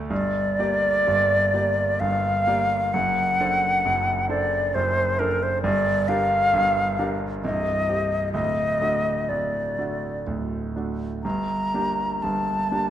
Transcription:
Already playing: D2 A3 A4 D5
0.10 G1 G2 D5
0.59 A#3 G4 D5
1.07 G1 G2
1.54 A#3 G4 D5
2.00 G1 G2 F5
2.47 A#3 G4 D5
2.93 F#1 F#2 F#5
3.40 D4 A4 C5
3.85 F#1 F#2
4.29 D4 A4 C5 D5
4.75 F#1 F#2 C5
5.19 D4 A4 A#4 C5
5.43 C5
5.62 G1 G2 D5
6.08 D4 G4 A#4 F5
6.53 G1 G2
6.99 D4 G4 A#4
7.42 C1 C2 D#5
7.89 C4 G4
8.33 D1 D2 D#5
8.81 A3 D4 F#4
9.29 D1 D2 D5
9.78 A3 D4 F#4
10.27 D1 D2
10.76 A3 D4 F#4
11.24 G1 G2 A#5
11.74 A#3 D4 G4
12.22 G1 G2 A5
12.71 A#3 D4 G4

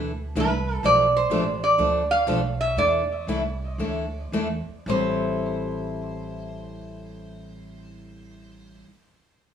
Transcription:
Already playing: D2 E3 A3 D4 E4 A4
0.35 C2 E3 A3 D4 E4 A4
0.40 B4
0.83 B1 B2 F3 A3 D4 A4 D5
1.17 C5
1.30 A1 B2 F3 A3 D4 A4
1.64 D5
1.78 D2 B2 F3 A3 D4 A4
2.11 F5
2.27 B1 B2 F3 A3 D4 A4
2.61 E5
2.76 E2 E3 A3 D4 E4 A4 D5
3.27 C2 E3 A3 D4 E4 A4
3.78 D2 E3 A3 D4 E4 A4
4.32 E2 E3 A3 D4 E4 A4
4.68 muted upright bass stroke
4.86 A1 A2 E3 G3 C4 E4 A4 C5

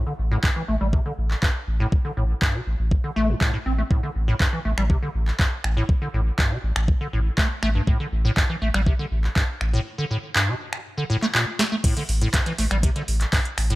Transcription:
0.07 D3
0.19 A1
0.31 A2
0.43 G2, kick, clap
0.56 E3
0.68 A1 A3
0.81 A1 G3
0.93 C3, kick
1.06 D3
1.18 A1
1.31 clap
1.43 G2, kick, clap
1.67 A1
1.80 A2
1.92 kick
2.05 D3
2.17 A1 A2
2.42 G2, kick, clap
2.54 C3
2.67 A1
2.79 A1
2.91 kick
3.04 D3
3.16 A1 A3
3.29 G2
3.41 A2, kick, clap
3.54 A2
3.66 A1 C4
3.78 A3
3.91 A2, kick
4.03 D3
4.15 A1
4.28 A2
4.40 G2, kick, clap
4.53 E3
4.65 A1 A3
4.78 A1 G3, finger snap
4.90 C3, kick
5.03 D3
5.15 A1
5.28 clap
5.39 G2, kick, clap
5.64 A1, finger snap
5.77 A2
5.89 kick
6.02 D3
6.14 A1 A2
6.39 G2, kick, clap
6.51 C3
6.63 A1
6.76 A1, finger snap
6.88 kick
7.01 D3
7.13 A1 A2
7.38 A3, kick, clap
7.63 A1 A3, finger snap
7.75 G2
7.87 A2, kick
8.00 D3
8.12 A1
8.25 A2
8.37 G2, kick, clap
8.49 E3
8.62 A1 A3
8.74 A1 G3, finger snap
8.87 C3, kick
8.99 D3
9.11 A1
9.24 clap
9.36 G2, kick, clap
9.61 A1, finger snap
9.73 A2
9.98 D3
10.11 A2
10.35 G2, clap
10.48 C3
10.73 finger snap
10.98 D3
11.10 A2
11.22 A3, clap
11.35 A#2, clap
11.59 A3, snare
11.72 A3
11.84 A2, kick, closed hi-hat, crash
11.97 D3, snare, closed hi-hat
12.09 A1, closed hi-hat, open hi-hat
12.21 A2, closed hi-hat
12.34 G2, kick, snare, clap, closed hi-hat
12.46 E3, snare, closed hi-hat
12.58 A1 A3, snare, closed hi-hat, open hi-hat
12.71 A1 G3, finger snap, closed hi-hat
12.83 C3, kick, closed hi-hat
12.96 D3, snare, closed hi-hat
13.08 A1, closed hi-hat, open hi-hat
13.21 clap, closed hi-hat
13.33 G2, kick, snare, clap, closed hi-hat, open hi-hat
13.45 closed hi-hat
13.58 A1, finger snap, closed hi-hat, open hi-hat
13.70 A2, closed hi-hat

